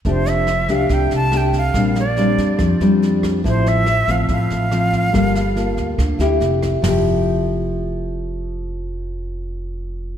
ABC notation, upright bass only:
X:1
M:4/4
L:1/8
Q:1/4=142
K:F
V:1 name="Upright bass" clef=bass
F,,,3 C,, C,, C,,3 | B,,,3 F,, F,, F,,3 | A,,,3 A,,, A,,, A,,,3 | G,,,3 D,, D,, D,, F,,,2 |
F,,,8- | F,,,8 |]